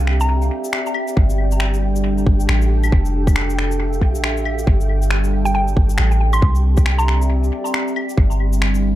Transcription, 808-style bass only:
Already playing: C2
1.17 G1
2.27 G1
2.49 A1
2.93 F1
4.02 C2
4.15 A1
4.67 G1
5.77 G1
5.99 A1
6.42 C2
8.18 G1

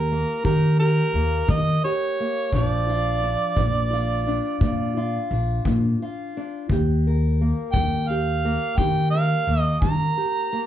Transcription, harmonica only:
Already playing: A#4
0.46 A#4
0.80 A#4
1.51 D#5
1.84 C#5
2.54 C#5
2.65 D5
7.72 G5
8.09 F5
8.77 G5
9.11 F5
9.61 D#5
9.82 A#5

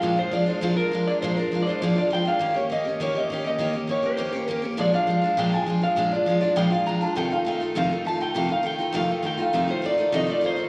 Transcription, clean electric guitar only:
Already playing: F5
0.19 C5
0.33 D5
0.48 C5
0.77 A#4
1.07 D5
1.22 C5
1.36 A#4
1.62 D5
1.67 C5
1.81 D5
1.98 D5
2.13 G5
2.28 F5
2.56 C#5
2.72 D#5
3.02 C#5
3.18 D#5
3.47 D#5
3.91 C#5
4.06 C5
4.48 A#4
4.81 D5
4.95 F5
5.39 G5
5.54 G#5
5.83 F5
6.13 D5
6.41 D5
6.57 G5
6.72 F5
6.87 A#5
7.02 A5
7.17 G5
7.32 F5
7.47 G5
7.77 F5
8.07 A5
8.22 G5
8.52 F5
8.66 G5
8.96 F5
9.26 G5
9.42 F5
9.71 C5
9.86 D5
10.16 D#5
10.32 D5
10.46 C5

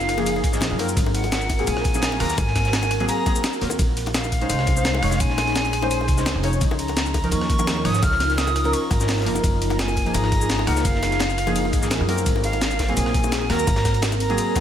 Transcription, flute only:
Already playing: F5
1.14 F#5
1.67 G#5
2.20 A#5
2.38 G#5
3.09 A#5
4.14 F5
5.20 G#5
6.79 A#5
7.32 C#6
7.85 D#6
8.03 F6
8.38 D#6
8.73 C#6
8.91 A#5
9.72 A#5
9.79 G#5
10.14 A#5
10.67 F#5
10.85 F5
12.44 F5
12.97 G#5
13.50 A#5
14.20 A#5

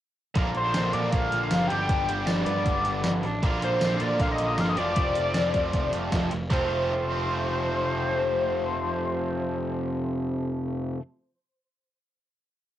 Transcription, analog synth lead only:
0.57 C5
0.93 D5
1.11 F5
1.68 G5
1.86 G5
2.26 D5
2.45 D5
3.64 C5
4.02 D5
4.21 F5
4.32 D#5
4.60 F5
4.69 D#5
4.78 D5
6.52 C5

